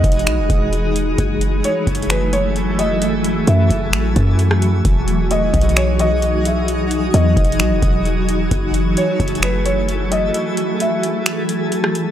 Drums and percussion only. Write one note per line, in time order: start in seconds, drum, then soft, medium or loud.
0.04 kick loud
0.04 closed hi-hat medium
0.12 closed hi-hat medium
0.19 closed hi-hat medium
0.27 finger snap loud
0.27 closed hi-hat medium
0.50 kick medium
0.50 closed hi-hat medium
0.73 closed hi-hat medium
0.96 closed hi-hat medium
1.18 kick loud
1.18 closed hi-hat medium
1.41 closed hi-hat medium
1.64 closed hi-hat medium
1.87 kick medium
1.87 closed hi-hat medium
1.95 closed hi-hat medium
2.02 closed hi-hat medium
2.10 finger snap loud
2.10 closed hi-hat medium
2.33 closed hi-hat medium
2.56 closed hi-hat medium
2.79 closed hi-hat medium
3.02 closed hi-hat medium
3.24 closed hi-hat medium
3.47 closed hi-hat medium
3.70 kick loud
3.70 closed hi-hat medium
3.93 finger snap loud
3.93 closed hi-hat medium
4.16 kick loud
4.16 closed hi-hat medium
4.39 closed hi-hat medium
4.51 cross-stick loud
4.62 closed hi-hat medium
4.85 kick loud
4.85 closed hi-hat medium
5.08 closed hi-hat medium
5.31 closed hi-hat medium
5.54 kick loud
5.54 closed hi-hat medium
5.61 closed hi-hat medium
5.69 closed hi-hat medium
5.76 finger snap loud
5.76 closed hi-hat medium
5.99 closed hi-hat medium
6.22 closed hi-hat medium
6.45 closed hi-hat medium
6.68 closed hi-hat medium
6.91 closed hi-hat medium
7.14 closed hi-hat medium
7.37 kick medium
7.37 closed hi-hat medium
7.45 closed hi-hat medium
7.52 closed hi-hat medium
7.59 finger snap loud
7.59 closed hi-hat medium
7.82 kick loud
7.82 closed hi-hat medium
8.05 closed hi-hat medium
8.29 closed hi-hat medium
8.51 kick loud
8.51 closed hi-hat medium
8.74 closed hi-hat medium
8.97 closed hi-hat medium
9.20 kick medium
9.20 closed hi-hat medium
9.28 closed hi-hat medium
9.35 closed hi-hat medium
9.42 finger snap loud
9.42 closed hi-hat medium
9.66 closed hi-hat medium
9.89 closed hi-hat medium
10.12 closed hi-hat medium
10.34 closed hi-hat medium
10.57 closed hi-hat medium
10.80 closed hi-hat medium
11.03 closed hi-hat medium
11.26 finger snap loud
11.26 closed hi-hat medium
11.49 closed hi-hat medium
11.72 closed hi-hat medium
11.84 cross-stick loud
11.95 closed hi-hat medium